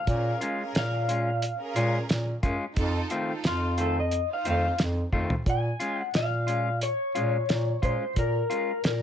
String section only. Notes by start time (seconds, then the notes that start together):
0.08 C#4 G#4 A#4
0.58 C#4 G#4 A#4
1.59 C#4 G#4 A#4
2.76 D#4 F4 A4
3.27 D#4 F4 A4
4.29 D#4 F4 C5